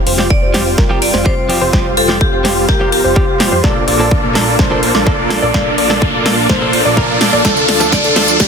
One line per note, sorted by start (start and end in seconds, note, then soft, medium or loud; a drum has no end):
0.00 3.60 G3 medium
0.00 3.60 C4 medium
0.00 3.60 F4 medium
0.00 riser medium
0.07 0.40 F1 loud
0.07 0.40 F4 medium
0.07 0.40 G4 medium
0.07 0.40 C5 medium
0.07 open hi-hat loud
0.18 0.27 F3 medium
0.18 0.27 G3 medium
0.18 0.27 C4 medium
0.18 0.27 G4 medium
0.18 snare soft
0.30 0.50 D5 medium
0.30 kick loud
0.42 0.76 F1 medium
0.42 0.75 F4 medium
0.42 0.75 G4 medium
0.42 0.75 C5 medium
0.54 0.62 F3 medium
0.54 0.62 G3 medium
0.54 0.63 C4 medium
0.54 0.63 G4 loud
0.54 snare soft
0.54 open hi-hat medium
0.78 1.11 F4 medium
0.78 1.11 G4 medium
0.78 1.11 A#4 medium
0.78 kick loud
0.78 snare soft
0.89 0.98 F3 medium
0.89 0.98 G3 medium
0.89 0.98 C4 medium
0.89 0.98 G4 medium
1.02 1.21 D5 medium
1.02 open hi-hat loud
1.14 1.59 F1 loud
1.14 1.59 F4 medium
1.14 1.59 G4 medium
1.14 1.59 C5 medium
1.14 snare soft
1.25 1.34 F3 medium
1.25 1.34 G3 medium
1.25 1.34 C4 medium
1.25 1.34 G4 medium
1.25 1.45 C5 medium
1.25 kick loud
1.49 1.62 F3 medium
1.49 1.62 G3 medium
1.49 1.63 C4 medium
1.49 1.63 G4 medium
1.49 open hi-hat medium
1.61 1.71 F1 loud
1.61 1.71 F4 loud
1.61 1.70 G4 medium
1.61 1.70 C5 loud
1.61 1.71 C5 loud
1.73 1.86 F3 medium
1.73 1.86 G3 soft
1.73 1.86 C4 medium
1.73 1.94 F4 medium
1.73 1.94 G4 medium
1.73 1.87 G4 medium
1.73 1.94 C5 loud
1.73 kick loud
1.73 snare medium
1.97 2.30 F1 medium
1.97 2.30 F4 medium
1.97 2.30 G4 medium
1.97 2.17 A4 medium
1.97 2.30 C5 medium
1.97 open hi-hat loud
2.08 2.17 F3 medium
2.08 2.17 G3 medium
2.08 2.17 C4 medium
2.08 2.18 G4 medium
2.08 snare soft
2.21 2.66 G4 medium
2.21 kick loud
2.33 2.66 F1 loud
2.33 2.66 F4 medium
2.33 2.66 G4 medium
2.33 2.66 C5 medium
2.44 2.53 F3 medium
2.44 2.53 G3 medium
2.44 2.53 C4 medium
2.44 2.53 G4 medium
2.44 snare medium
2.44 open hi-hat medium
2.69 3.02 F4 medium
2.69 2.90 G4 medium
2.69 3.02 G4 medium
2.69 3.01 A#4 medium
2.69 3.02 A#4 medium
2.69 kick loud
2.69 snare medium
2.80 2.88 F3 medium
2.80 2.89 G3 medium
2.80 2.89 C4 medium
2.80 2.89 G4 medium
2.92 3.59 G4 medium
2.92 open hi-hat loud
3.04 3.50 F1 loud
3.04 3.49 F4 medium
3.04 3.49 G4 medium
3.04 3.49 C5 medium
3.16 3.24 F3 medium
3.16 3.24 G3 medium
3.16 3.24 C4 medium
3.16 3.25 G4 loud
3.16 kick loud
3.39 3.53 A#2 medium
3.39 3.53 F3 medium
3.39 3.53 G3 medium
3.39 3.53 C4 medium
3.39 3.53 G4 medium
3.39 snare medium
3.39 open hi-hat medium
3.52 3.61 F2 loud
3.52 3.61 F4 medium
3.52 3.61 G4 medium
3.52 3.61 C5 loud
3.63 3.85 A#1 loud
3.63 3.77 A#2 medium
3.63 3.77 F3 medium
3.63 3.77 A#3 medium
3.63 7.41 A#3 medium
3.63 3.85 A#3 medium
3.63 8.48 D4 medium
3.63 3.85 D4 medium
3.63 3.77 D4 medium
3.63 3.85 F4 medium
3.63 8.48 A4 medium
3.63 3.85 A4 medium
3.63 3.77 A4 medium
3.63 3.85 D5 loud
3.63 kick loud
3.63 snare medium
3.88 4.21 A#1 loud
3.88 4.20 A#3 medium
3.88 4.20 D4 medium
3.88 4.20 F4 medium
3.88 4.20 A4 medium
3.88 4.20 D5 medium
3.88 4.21 D5 medium
3.88 open hi-hat loud
3.99 4.07 A#2 medium
3.99 4.08 F3 medium
3.99 4.08 A#3 medium
3.99 4.08 D4 medium
3.99 4.08 A4 medium
4.11 kick loud
4.23 4.57 A#1 loud
4.23 4.56 A#3 medium
4.23 4.56 D4 medium
4.23 4.56 F4 medium
4.23 4.56 A4 medium
4.23 4.56 D5 medium
4.34 4.43 A#2 loud
4.34 4.43 F3 medium
4.34 4.43 A#3 medium
4.34 4.44 D4 medium
4.34 4.44 A4 loud
4.34 snare medium
4.34 open hi-hat medium
4.59 4.92 A#3 medium
4.59 4.92 D4 medium
4.59 4.92 F4 medium
4.59 4.92 A4 medium
4.59 4.92 C5 medium
4.59 kick loud
4.59 snare medium
4.70 4.79 A#2 medium
4.70 4.79 F3 medium
4.70 4.79 A#3 medium
4.70 4.79 D4 medium
4.70 4.79 A4 medium
4.83 open hi-hat loud
4.95 5.40 A#1 loud
4.95 5.40 A#3 medium
4.95 5.40 D4 medium
4.95 5.40 F4 medium
4.95 5.40 A4 medium
4.95 5.40 D5 medium
4.95 snare medium
5.06 5.15 A#2 medium
5.06 5.15 F3 medium
5.06 5.15 A#3 medium
5.06 5.15 D4 medium
5.06 5.15 A4 loud
5.06 kick loud
5.30 5.43 A#2 medium
5.30 5.43 F3 medium
5.30 5.44 A#3 medium
5.30 5.44 D4 medium
5.30 5.44 A4 medium
5.30 snare medium
5.30 open hi-hat medium
5.42 5.52 A#1 loud
5.42 5.51 A#3 loud
5.42 5.51 D4 medium
5.42 5.51 F4 medium
5.42 5.51 A4 medium
5.42 5.51 D5 loud
5.54 5.67 A#2 medium
5.54 5.67 F3 medium
5.54 5.67 A#3 medium
5.54 5.75 A#3 medium
5.54 5.75 D4 medium
5.54 5.68 D4 medium
5.54 5.75 F4 medium
5.54 5.75 A4 medium
5.54 5.68 A4 medium
5.54 5.75 D5 loud
5.54 kick loud
5.54 snare medium
5.78 6.11 A#1 medium
5.78 6.11 A#3 medium
5.78 6.11 D4 medium
5.78 6.11 F4 medium
5.78 6.11 A4 medium
5.78 6.11 D5 medium
5.78 open hi-hat loud
5.89 5.98 A#2 medium
5.89 5.98 F3 medium
5.89 5.98 A#3 medium
5.89 5.98 D4 medium
5.89 5.99 A4 medium
5.89 snare medium
6.02 kick loud
6.14 6.47 A#1 loud
6.14 6.47 A#3 medium
6.14 6.47 D4 medium
6.14 6.47 F4 medium
6.14 6.47 A4 medium
6.14 6.47 D5 medium
6.25 6.34 A#2 loud
6.25 6.34 F3 medium
6.25 6.34 A#3 medium
6.25 6.34 D4 medium
6.25 6.34 A4 loud
6.25 snare medium
6.25 open hi-hat medium
6.49 6.82 A#3 medium
6.49 6.82 D4 medium
6.49 6.82 F4 medium
6.49 6.82 A4 medium
6.49 6.82 C5 medium
6.49 kick loud
6.49 snare medium
6.61 6.69 A#2 medium
6.61 6.70 F3 medium
6.61 6.70 A#3 medium
6.61 6.70 D4 medium
6.61 6.70 A4 medium
6.73 open hi-hat loud
6.85 7.31 A#1 loud
6.85 7.30 A#3 medium
6.85 7.30 D4 medium
6.85 7.30 F4 medium
6.85 7.30 A4 medium
6.85 7.30 D5 medium
6.97 7.18 A#2 medium
6.97 7.18 F3 medium
6.97 7.18 A#3 medium
6.97 7.18 D4 medium
6.97 7.18 A#4 loud
6.97 kick loud
7.20 7.34 F3 medium
7.20 7.34 A#3 medium
7.20 7.34 D4 medium
7.20 7.34 A4 medium
7.20 snare medium
7.20 open hi-hat medium
7.33 7.42 A#1 loud
7.33 7.42 A#3 medium
7.33 7.42 D4 medium
7.33 7.42 F4 medium
7.33 7.42 A4 medium
7.33 7.42 D5 loud
7.44 7.66 D2 loud
7.44 7.58 F3 medium
7.44 8.48 F3 medium
7.44 7.58 A3 medium
7.44 7.66 D4 loud
7.44 7.58 D4 medium
7.44 7.66 F4 medium
7.44 7.66 A4 loud
7.44 7.58 A4 medium
7.44 kick loud
7.44 snare medium
7.44 closed hi-hat medium
7.44 tambourine medium
7.57 closed hi-hat soft
7.57 tambourine soft
7.68 8.02 D2 loud
7.68 8.01 D4 medium
7.68 8.01 F4 medium
7.68 8.01 A4 medium
7.68 snare medium
7.68 open hi-hat loud
7.80 7.88 F3 medium
7.80 7.89 A3 medium
7.80 7.89 D4 medium
7.80 7.89 A4 medium
7.80 closed hi-hat soft
7.80 tambourine medium
7.92 8.12 D5 medium
7.92 kick loud
7.92 snare medium
7.92 closed hi-hat medium
7.92 tambourine medium
8.04 8.38 D2 loud
8.04 8.37 D4 medium
8.04 8.37 F4 medium
8.04 8.37 A4 medium
8.04 closed hi-hat soft
8.04 tambourine soft
8.16 8.24 F3 medium
8.16 8.24 A3 medium
8.16 8.25 D4 medium
8.16 8.25 A4 loud
8.16 snare medium
8.16 open hi-hat medium
8.28 closed hi-hat soft
8.28 tambourine medium
8.40 8.48 D2 medium
8.40 8.48 D4 medium
8.40 8.48 F4 medium
8.40 8.48 G4 medium
8.40 kick loud
8.40 snare medium
8.40 closed hi-hat medium
8.40 tambourine medium